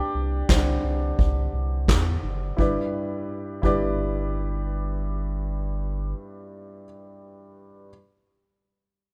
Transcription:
Already playing: D4 G4 D5 G5
0.15 C2
0.49 C2 D3 G3 C4, kick, snare, clap
0.84 C2
1.19 C2, kick
1.53 C2
1.88 E2, kick, snare, clap
2.23 F#1
2.57 G1 G2 E4 G4 B4 D5, kick, ride
3.62 G1 G2 E4 G4 B4, kick, ride
3.66 D5

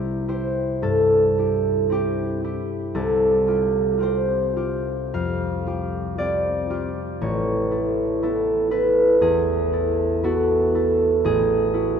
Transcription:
Already playing: C2 C4 E4 G4 D5 E5
0.28 E4 G4 C5
0.82 G2 A4
1.38 E4 G4
1.90 C4 E4 G4
2.44 E4 G4
2.95 C2 A4
3.47 F4 G4
3.98 C4 F4 G4
4.03 C5
4.56 F4 G4
5.14 F2 F5
5.67 F4 G4
6.18 C4 F4 G4 D5
6.70 F4 G4
7.21 A1 C#5
7.71 E4 A4
8.22 B3 E4 A4
8.71 E4 A4 B4
9.21 E2 G#4
9.73 E4 A4
10.23 B3 E4 F#4 A4
10.75 E4 A4
11.24 A1 G#4
11.74 E4 F#4

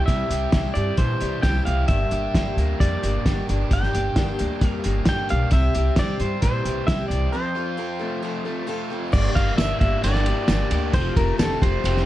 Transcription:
Already playing: E3 G3 E4 G4
0.06 C2 C3 G3 C4 E4 G4 E5, kick, closed hi-hat
0.30 C2 C4 E4 G4, closed hi-hat
0.52 C2 C3 G3 C4 E4 G4, kick, snare, closed hi-hat
0.74 G2 G3 E4 G4 D5, closed hi-hat
0.78 C4
0.97 A#2 E3 G3 C4 E4 G4 C5, kick, closed hi-hat
1.20 C2 G3 C4 E4 G4, closed hi-hat
1.42 C2 C3 G3 C4 E4 G4 G5, kick, snare, closed hi-hat
1.65 C2 C4 E4 G4 F5, closed hi-hat
1.88 G1 G2 D3 G3 A#3 D4 G4 E5, kick, closed hi-hat
2.11 G1 G3 A#3 D4 G4, closed hi-hat
2.35 G1 G2 D3 G3 A#3 D4 G4, kick, snare, closed hi-hat
2.57 D2 G3 A#3 D4 G4, closed hi-hat
2.80 F2 G3 A#3 D4 G4 D5, kick, closed hi-hat
3.02 G1 G3 A#3 D4 G4, closed hi-hat
3.26 G1 G2 D3 G3 A#3 D4 G4, kick, snare, closed hi-hat
3.48 G1 G3 A#3 D4 G4, closed hi-hat
3.71 G1 G2 D3 G3 A#3 D4 G4 G5, kick, closed hi-hat
3.83 snare
3.94 G1 G3 A#3 D4 G4, closed hi-hat
4.16 G1 G2 D3 G3 A#3 D4 G4, kick, snare, closed hi-hat
4.39 D2 G3 A#3 D4 G4, closed hi-hat
4.61 F2 G3 A#3 D4 G4, kick, closed hi-hat
4.67 F5
4.84 G1 G3 A#3 D4 G4, closed hi-hat
5.05 G1 G2 D3 G3 A#3 D4 G4 G5, kick, snare, closed hi-hat
5.29 B1 G3 A#3 D4 G4 F5, closed hi-hat
5.51 C2 C3 G3 C4 E4 G4 E5, kick, closed hi-hat
5.75 C2 C4 E4 G4, closed hi-hat
5.96 C2 C3 G3 C4 E4 G4 D5, kick, snare, closed hi-hat
6.19 G2 G3 C4 E4 G4 C5, closed hi-hat
6.42 A#2 E3 G3 C4 E4 G4 C5, kick, closed hi-hat
6.65 C2 G3 C4 E4 G4, closed hi-hat
6.87 C2 C3 G3 C4 E4 G4 E5, kick, snare, closed hi-hat
7.08 C2 E4 G4 D5, closed hi-hat
7.13 C4
7.32 F2 F3 C4 F4 A4 C5
7.55 C4 F4 A4
7.77 F3 C4 F4 A4
7.99 A3 C4 F4 A4
8.22 F3 C4 F4 A4
8.45 A3 C4 F4 A4
8.67 F3 C4 F4 A4
8.90 C4 F4 A4
9.12 G1 G2 D3 G3 A#3 D4 G4 D5, kick, crash
9.35 G1 A#3 D4 G4 F5, kick, ride
9.57 G1 G3 A#3 D4 G4 E5, snare, ride, tambourine
9.80 G1 G3 A#3 D4 G4 E5, kick, ride
10.04 G1 G2 D3 G3 A#3 D4 G4 D5, ride
10.15 snare
10.26 G3 A#3 D4 G4, ride
10.48 G1 G3 A#3 D4 G4, snare, ride, tambourine
10.71 D2 G3 A#3 D4 G4, ride
10.93 F1 F3 A3 C4 F4 G4 C5, kick, ride
11.16 F1 A3 C4 F4 G4 A#4, kick, ride
11.38 F1 A3 C4 F4 G4 A4, snare, ride, tambourine
11.61 F1 A3 C4 F4 G4 C5, kick, ride
11.84 F1 F3 A3 C4 F4 G4, ride
11.97 snare

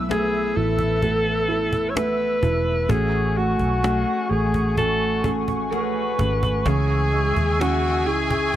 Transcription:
Already playing: B1 A3 E4 A4 B4 E5 E6
0.09 A3 B3 E4 G#4, cajon slap
0.56 A1 E4 A4
0.79 cajon bass
1.01 A3 B3 E4 A4, cajon bass
1.48 B3 E4 A4
1.73 cajon bass
1.89 C#5
1.95 A3 B3 E4 A4 B4, cajon slap
2.41 E1 B3 E4 A4, cajon bass
2.88 A1 A3 C#4 F#4 G#4 F#5 G#5 C#6, cajon bass
3.37 A3 F#4
3.59 B1, cajon bass
3.82 A3 C#4 F#4 G#4, cajon slap
4.29 A1 A3 G#4
4.54 cajon bass
4.77 A3 C#4 F#4 A4, cajon bass
5.23 A3 C#4 F#4 G#4, cajon bass
5.48 cajon bass
5.70 A3 C#4 F#4 G#4 B4, cajon slap
6.18 G#1 A3 C#4 F#4 G#4, cajon bass
6.43 cajon bass
6.65 C#2 C#3 E3 C#4 E4 G#4 E5 G#5 E6, cajon bass
7.13 G#3
7.36 D#2, cajon bass
7.59 C#3 C#4 E4 F#4 G#4, cajon slap
8.06 C#2 E4 G#4
8.30 cajon bass
8.53 E3

